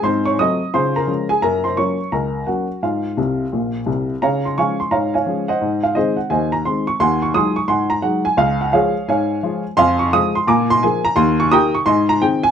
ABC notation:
X:1
M:4/4
L:1/8
Q:"Swing" 1/4=173
K:Db
V:1 name="Upright piano"
[cc'] [dd'] [ee']2 [cc'] [Bb]2 [Aa] | [Bb] [cc'] [dd']2 [Bb]2 [Gg]2 | [Ff]6- [Ff] z | [dfb] c' [fad'] c' [dfb] [dfa]2 [ceg]- |
[ceg] f [Ace] g [cea] b c' d' | [gac'] d' [ac'e'] d' [gac'] b g a | f g [Adf]2 [dfa]3 z | [K:Ab] [fac'] d' e' c' [ab=d'] c' a b |
c' d' [gbe'] d' [eac'] b g a |]
V:2 name="Upright piano" clef=bass
[A,,C]2 [G,=A,C]2 [D,F]2 [F,_A,D]2 | [G,,B,]2 [G,B,D]2 D,,2 [G,B,D]2 | A,,2 [C,,C,]2 [B,,,B,,]2 [C,,C,]2 | D,2 [F,A,D]2 A,,2 [F,A,D]2 |
A,,2 [E,A,C]2 E,,2 [E,A,C]2 | E,,2 [G,A,E]2 A,,2 [G,A,E]2 | D,,2 [F,A,F]2 A,,2 [F,A,F]2 | [K:Ab] F,,2 [F,A,F]2 B,,2 [F,B,A]2 |
E,,2 [E,B,G]2 A,,2 [E,CA]2 |]